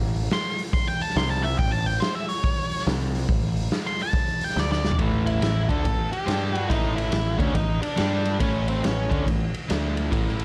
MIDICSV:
0, 0, Header, 1, 5, 480
1, 0, Start_track
1, 0, Tempo, 426136
1, 1784, Time_signature, 4, 2, 24, 8
1, 11766, End_track
2, 0, Start_track
2, 0, Title_t, "Lead electric guitar"
2, 0, Program_c, 0, 29
2, 370, Note_on_c, 0, 84, 111
2, 669, Note_off_c, 0, 84, 0
2, 828, Note_on_c, 0, 84, 91
2, 983, Note_off_c, 0, 84, 0
2, 992, Note_on_c, 0, 79, 99
2, 1141, Note_on_c, 0, 81, 92
2, 1144, Note_off_c, 0, 79, 0
2, 1314, Note_off_c, 0, 81, 0
2, 1314, Note_on_c, 0, 84, 100
2, 1463, Note_off_c, 0, 84, 0
2, 1468, Note_on_c, 0, 81, 89
2, 1615, Note_on_c, 0, 76, 96
2, 1621, Note_off_c, 0, 81, 0
2, 1775, Note_off_c, 0, 76, 0
2, 1786, Note_on_c, 0, 79, 102
2, 1935, Note_off_c, 0, 79, 0
2, 1939, Note_on_c, 0, 81, 99
2, 2098, Note_off_c, 0, 81, 0
2, 2098, Note_on_c, 0, 79, 92
2, 2253, Note_on_c, 0, 72, 97
2, 2256, Note_off_c, 0, 79, 0
2, 2413, Note_off_c, 0, 72, 0
2, 2423, Note_on_c, 0, 76, 89
2, 2574, Note_off_c, 0, 76, 0
2, 2574, Note_on_c, 0, 73, 115
2, 3198, Note_off_c, 0, 73, 0
2, 4359, Note_on_c, 0, 84, 90
2, 4505, Note_off_c, 0, 84, 0
2, 4534, Note_on_c, 0, 81, 104
2, 4983, Note_off_c, 0, 81, 0
2, 5005, Note_on_c, 0, 79, 97
2, 5148, Note_off_c, 0, 79, 0
2, 5176, Note_on_c, 0, 74, 89
2, 5303, Note_off_c, 0, 74, 0
2, 5316, Note_on_c, 0, 74, 104
2, 5564, Note_off_c, 0, 74, 0
2, 5930, Note_on_c, 0, 64, 97
2, 6377, Note_off_c, 0, 64, 0
2, 6410, Note_on_c, 0, 69, 108
2, 6858, Note_off_c, 0, 69, 0
2, 6899, Note_on_c, 0, 67, 93
2, 7372, Note_off_c, 0, 67, 0
2, 7372, Note_on_c, 0, 66, 93
2, 7537, Note_on_c, 0, 63, 98
2, 7568, Note_off_c, 0, 66, 0
2, 7828, Note_off_c, 0, 63, 0
2, 7837, Note_on_c, 0, 64, 90
2, 8292, Note_off_c, 0, 64, 0
2, 8329, Note_on_c, 0, 61, 79
2, 8492, Note_off_c, 0, 61, 0
2, 8510, Note_on_c, 0, 63, 90
2, 8796, Note_off_c, 0, 63, 0
2, 8810, Note_on_c, 0, 62, 88
2, 9466, Note_off_c, 0, 62, 0
2, 9470, Note_on_c, 0, 61, 86
2, 9783, Note_off_c, 0, 61, 0
2, 9788, Note_on_c, 0, 60, 75
2, 9943, Note_off_c, 0, 60, 0
2, 9980, Note_on_c, 0, 61, 70
2, 10413, Note_off_c, 0, 61, 0
2, 11766, End_track
3, 0, Start_track
3, 0, Title_t, "Overdriven electric guitar"
3, 0, Program_c, 1, 29
3, 5620, Note_on_c, 1, 45, 94
3, 5632, Note_on_c, 1, 52, 98
3, 5641, Note_on_c, 1, 57, 101
3, 6096, Note_off_c, 1, 45, 0
3, 6097, Note_off_c, 1, 52, 0
3, 6106, Note_off_c, 1, 57, 0
3, 6111, Note_on_c, 1, 45, 60
3, 6111, Note_on_c, 1, 52, 70
3, 6353, Note_off_c, 1, 45, 0
3, 6353, Note_off_c, 1, 52, 0
3, 6409, Note_on_c, 1, 50, 81
3, 6415, Note_on_c, 1, 57, 79
3, 6419, Note_on_c, 1, 62, 89
3, 6565, Note_off_c, 1, 50, 0
3, 6568, Note_off_c, 1, 57, 0
3, 6569, Note_on_c, 1, 45, 59
3, 6572, Note_on_c, 1, 52, 67
3, 6582, Note_off_c, 1, 62, 0
3, 6823, Note_off_c, 1, 45, 0
3, 6825, Note_off_c, 1, 52, 0
3, 7051, Note_on_c, 1, 55, 86
3, 7058, Note_on_c, 1, 62, 87
3, 7063, Note_on_c, 1, 67, 99
3, 7519, Note_on_c, 1, 45, 101
3, 7527, Note_off_c, 1, 55, 0
3, 7532, Note_on_c, 1, 52, 103
3, 7537, Note_off_c, 1, 62, 0
3, 7539, Note_off_c, 1, 67, 0
3, 7541, Note_on_c, 1, 57, 112
3, 7986, Note_off_c, 1, 45, 0
3, 7988, Note_off_c, 1, 52, 0
3, 8000, Note_on_c, 1, 45, 63
3, 8002, Note_on_c, 1, 52, 71
3, 8019, Note_off_c, 1, 57, 0
3, 8261, Note_off_c, 1, 45, 0
3, 8261, Note_off_c, 1, 52, 0
3, 8306, Note_on_c, 1, 50, 85
3, 8312, Note_on_c, 1, 57, 90
3, 8320, Note_on_c, 1, 62, 89
3, 8483, Note_off_c, 1, 57, 0
3, 8487, Note_on_c, 1, 52, 66
3, 8488, Note_off_c, 1, 50, 0
3, 8492, Note_on_c, 1, 45, 68
3, 8495, Note_off_c, 1, 62, 0
3, 8745, Note_off_c, 1, 52, 0
3, 8747, Note_off_c, 1, 45, 0
3, 8969, Note_on_c, 1, 55, 86
3, 8976, Note_on_c, 1, 62, 96
3, 8982, Note_on_c, 1, 67, 92
3, 9445, Note_off_c, 1, 55, 0
3, 9449, Note_on_c, 1, 52, 103
3, 9454, Note_on_c, 1, 45, 93
3, 9458, Note_off_c, 1, 62, 0
3, 9461, Note_off_c, 1, 67, 0
3, 9463, Note_on_c, 1, 57, 103
3, 9929, Note_off_c, 1, 45, 0
3, 9935, Note_off_c, 1, 52, 0
3, 9942, Note_off_c, 1, 57, 0
3, 9942, Note_on_c, 1, 45, 57
3, 9949, Note_on_c, 1, 52, 68
3, 10193, Note_off_c, 1, 45, 0
3, 10197, Note_off_c, 1, 52, 0
3, 10242, Note_on_c, 1, 50, 79
3, 10244, Note_on_c, 1, 57, 85
3, 10248, Note_on_c, 1, 62, 93
3, 10417, Note_off_c, 1, 50, 0
3, 10418, Note_off_c, 1, 57, 0
3, 10420, Note_off_c, 1, 62, 0
3, 10424, Note_on_c, 1, 45, 58
3, 10428, Note_on_c, 1, 52, 66
3, 10674, Note_off_c, 1, 45, 0
3, 10676, Note_off_c, 1, 52, 0
3, 10910, Note_on_c, 1, 50, 88
3, 10911, Note_on_c, 1, 57, 87
3, 10918, Note_on_c, 1, 62, 94
3, 11381, Note_off_c, 1, 50, 0
3, 11385, Note_on_c, 1, 45, 92
3, 11386, Note_off_c, 1, 57, 0
3, 11389, Note_off_c, 1, 62, 0
3, 11391, Note_on_c, 1, 52, 102
3, 11401, Note_on_c, 1, 57, 93
3, 11766, Note_off_c, 1, 45, 0
3, 11766, Note_off_c, 1, 52, 0
3, 11766, Note_off_c, 1, 57, 0
3, 11766, End_track
4, 0, Start_track
4, 0, Title_t, "Picked electric bass"
4, 0, Program_c, 2, 34
4, 0, Note_on_c, 2, 33, 96
4, 311, Note_off_c, 2, 33, 0
4, 1305, Note_on_c, 2, 36, 99
4, 1751, Note_off_c, 2, 36, 0
4, 1794, Note_on_c, 2, 33, 93
4, 2235, Note_off_c, 2, 33, 0
4, 3228, Note_on_c, 2, 36, 102
4, 3671, Note_off_c, 2, 36, 0
4, 3708, Note_on_c, 2, 33, 90
4, 4150, Note_off_c, 2, 33, 0
4, 5138, Note_on_c, 2, 38, 101
4, 5586, Note_off_c, 2, 38, 0
4, 5621, Note_on_c, 2, 33, 78
4, 6068, Note_off_c, 2, 33, 0
4, 6102, Note_on_c, 2, 33, 74
4, 6389, Note_off_c, 2, 33, 0
4, 6417, Note_on_c, 2, 38, 87
4, 6574, Note_off_c, 2, 38, 0
4, 6587, Note_on_c, 2, 33, 77
4, 6872, Note_off_c, 2, 33, 0
4, 7069, Note_on_c, 2, 43, 92
4, 7514, Note_off_c, 2, 43, 0
4, 7547, Note_on_c, 2, 33, 88
4, 7994, Note_off_c, 2, 33, 0
4, 8036, Note_on_c, 2, 33, 76
4, 8319, Note_off_c, 2, 33, 0
4, 8327, Note_on_c, 2, 38, 98
4, 8491, Note_off_c, 2, 38, 0
4, 8504, Note_on_c, 2, 33, 79
4, 8793, Note_off_c, 2, 33, 0
4, 9008, Note_on_c, 2, 43, 98
4, 9446, Note_off_c, 2, 43, 0
4, 9476, Note_on_c, 2, 33, 85
4, 9920, Note_off_c, 2, 33, 0
4, 9976, Note_on_c, 2, 33, 78
4, 10251, Note_off_c, 2, 33, 0
4, 10262, Note_on_c, 2, 38, 93
4, 10420, Note_off_c, 2, 38, 0
4, 10445, Note_on_c, 2, 33, 81
4, 10725, Note_off_c, 2, 33, 0
4, 10934, Note_on_c, 2, 38, 95
4, 11370, Note_off_c, 2, 38, 0
4, 11402, Note_on_c, 2, 33, 89
4, 11766, Note_off_c, 2, 33, 0
4, 11766, End_track
5, 0, Start_track
5, 0, Title_t, "Drums"
5, 176, Note_on_c, 9, 46, 65
5, 289, Note_off_c, 9, 46, 0
5, 345, Note_on_c, 9, 46, 85
5, 355, Note_on_c, 9, 38, 110
5, 458, Note_off_c, 9, 46, 0
5, 468, Note_off_c, 9, 38, 0
5, 658, Note_on_c, 9, 46, 67
5, 771, Note_off_c, 9, 46, 0
5, 825, Note_on_c, 9, 36, 114
5, 829, Note_on_c, 9, 46, 91
5, 937, Note_off_c, 9, 36, 0
5, 941, Note_off_c, 9, 46, 0
5, 1138, Note_on_c, 9, 46, 65
5, 1236, Note_on_c, 9, 38, 34
5, 1250, Note_off_c, 9, 46, 0
5, 1307, Note_on_c, 9, 46, 89
5, 1317, Note_off_c, 9, 38, 0
5, 1317, Note_on_c, 9, 38, 113
5, 1420, Note_off_c, 9, 46, 0
5, 1430, Note_off_c, 9, 38, 0
5, 1625, Note_on_c, 9, 46, 64
5, 1738, Note_off_c, 9, 46, 0
5, 1790, Note_on_c, 9, 36, 110
5, 1802, Note_on_c, 9, 46, 89
5, 1903, Note_off_c, 9, 36, 0
5, 1914, Note_off_c, 9, 46, 0
5, 2094, Note_on_c, 9, 46, 63
5, 2206, Note_off_c, 9, 46, 0
5, 2269, Note_on_c, 9, 46, 78
5, 2279, Note_on_c, 9, 38, 121
5, 2382, Note_off_c, 9, 46, 0
5, 2392, Note_off_c, 9, 38, 0
5, 2577, Note_on_c, 9, 46, 62
5, 2689, Note_off_c, 9, 46, 0
5, 2745, Note_on_c, 9, 46, 78
5, 2746, Note_on_c, 9, 36, 105
5, 2858, Note_off_c, 9, 46, 0
5, 2859, Note_off_c, 9, 36, 0
5, 3055, Note_on_c, 9, 46, 61
5, 3145, Note_on_c, 9, 38, 35
5, 3168, Note_off_c, 9, 46, 0
5, 3228, Note_on_c, 9, 46, 81
5, 3239, Note_off_c, 9, 38, 0
5, 3239, Note_on_c, 9, 38, 115
5, 3341, Note_off_c, 9, 46, 0
5, 3351, Note_off_c, 9, 38, 0
5, 3544, Note_on_c, 9, 46, 59
5, 3657, Note_off_c, 9, 46, 0
5, 3704, Note_on_c, 9, 36, 110
5, 3705, Note_on_c, 9, 46, 83
5, 3816, Note_off_c, 9, 36, 0
5, 3817, Note_off_c, 9, 46, 0
5, 4013, Note_on_c, 9, 46, 60
5, 4126, Note_off_c, 9, 46, 0
5, 4180, Note_on_c, 9, 46, 82
5, 4191, Note_on_c, 9, 38, 118
5, 4293, Note_off_c, 9, 46, 0
5, 4303, Note_off_c, 9, 38, 0
5, 4493, Note_on_c, 9, 46, 61
5, 4605, Note_off_c, 9, 46, 0
5, 4655, Note_on_c, 9, 36, 111
5, 4655, Note_on_c, 9, 46, 86
5, 4768, Note_off_c, 9, 36, 0
5, 4768, Note_off_c, 9, 46, 0
5, 4965, Note_on_c, 9, 46, 67
5, 5062, Note_on_c, 9, 38, 33
5, 5078, Note_off_c, 9, 46, 0
5, 5152, Note_off_c, 9, 38, 0
5, 5152, Note_on_c, 9, 38, 69
5, 5265, Note_off_c, 9, 38, 0
5, 5316, Note_on_c, 9, 38, 68
5, 5429, Note_off_c, 9, 38, 0
5, 5459, Note_on_c, 9, 38, 95
5, 5533, Note_on_c, 9, 43, 97
5, 5572, Note_off_c, 9, 38, 0
5, 5618, Note_on_c, 9, 36, 105
5, 5619, Note_on_c, 9, 51, 97
5, 5646, Note_off_c, 9, 43, 0
5, 5731, Note_off_c, 9, 36, 0
5, 5732, Note_off_c, 9, 51, 0
5, 5934, Note_on_c, 9, 51, 70
5, 6047, Note_off_c, 9, 51, 0
5, 6106, Note_on_c, 9, 51, 92
5, 6117, Note_on_c, 9, 38, 104
5, 6219, Note_off_c, 9, 51, 0
5, 6229, Note_off_c, 9, 38, 0
5, 6412, Note_on_c, 9, 36, 101
5, 6423, Note_on_c, 9, 51, 61
5, 6525, Note_off_c, 9, 36, 0
5, 6535, Note_off_c, 9, 51, 0
5, 6584, Note_on_c, 9, 36, 87
5, 6589, Note_on_c, 9, 51, 88
5, 6697, Note_off_c, 9, 36, 0
5, 6702, Note_off_c, 9, 51, 0
5, 6902, Note_on_c, 9, 51, 64
5, 7015, Note_off_c, 9, 51, 0
5, 7072, Note_on_c, 9, 51, 85
5, 7082, Note_on_c, 9, 38, 114
5, 7185, Note_off_c, 9, 51, 0
5, 7195, Note_off_c, 9, 38, 0
5, 7381, Note_on_c, 9, 51, 64
5, 7494, Note_off_c, 9, 51, 0
5, 7547, Note_on_c, 9, 36, 104
5, 7557, Note_on_c, 9, 51, 91
5, 7659, Note_off_c, 9, 36, 0
5, 7670, Note_off_c, 9, 51, 0
5, 7863, Note_on_c, 9, 51, 63
5, 7975, Note_off_c, 9, 51, 0
5, 8018, Note_on_c, 9, 51, 94
5, 8029, Note_on_c, 9, 38, 105
5, 8131, Note_off_c, 9, 51, 0
5, 8141, Note_off_c, 9, 38, 0
5, 8330, Note_on_c, 9, 36, 106
5, 8333, Note_on_c, 9, 51, 69
5, 8443, Note_off_c, 9, 36, 0
5, 8446, Note_off_c, 9, 51, 0
5, 8503, Note_on_c, 9, 51, 93
5, 8504, Note_on_c, 9, 36, 88
5, 8615, Note_off_c, 9, 51, 0
5, 8617, Note_off_c, 9, 36, 0
5, 8817, Note_on_c, 9, 51, 75
5, 8930, Note_off_c, 9, 51, 0
5, 8981, Note_on_c, 9, 51, 96
5, 8991, Note_on_c, 9, 38, 116
5, 9093, Note_off_c, 9, 51, 0
5, 9104, Note_off_c, 9, 38, 0
5, 9297, Note_on_c, 9, 51, 68
5, 9410, Note_off_c, 9, 51, 0
5, 9465, Note_on_c, 9, 51, 98
5, 9467, Note_on_c, 9, 36, 101
5, 9578, Note_off_c, 9, 51, 0
5, 9579, Note_off_c, 9, 36, 0
5, 9776, Note_on_c, 9, 51, 71
5, 9889, Note_off_c, 9, 51, 0
5, 9957, Note_on_c, 9, 51, 90
5, 9967, Note_on_c, 9, 38, 110
5, 10069, Note_off_c, 9, 51, 0
5, 10080, Note_off_c, 9, 38, 0
5, 10265, Note_on_c, 9, 36, 97
5, 10268, Note_on_c, 9, 51, 67
5, 10378, Note_off_c, 9, 36, 0
5, 10380, Note_off_c, 9, 51, 0
5, 10439, Note_on_c, 9, 36, 89
5, 10449, Note_on_c, 9, 51, 93
5, 10552, Note_off_c, 9, 36, 0
5, 10561, Note_off_c, 9, 51, 0
5, 10750, Note_on_c, 9, 51, 68
5, 10863, Note_off_c, 9, 51, 0
5, 10923, Note_on_c, 9, 51, 85
5, 10933, Note_on_c, 9, 38, 112
5, 11035, Note_off_c, 9, 51, 0
5, 11045, Note_off_c, 9, 38, 0
5, 11231, Note_on_c, 9, 51, 66
5, 11344, Note_off_c, 9, 51, 0
5, 11400, Note_on_c, 9, 36, 99
5, 11406, Note_on_c, 9, 51, 88
5, 11513, Note_off_c, 9, 36, 0
5, 11518, Note_off_c, 9, 51, 0
5, 11576, Note_on_c, 9, 38, 31
5, 11688, Note_off_c, 9, 38, 0
5, 11709, Note_on_c, 9, 51, 66
5, 11766, Note_off_c, 9, 51, 0
5, 11766, End_track
0, 0, End_of_file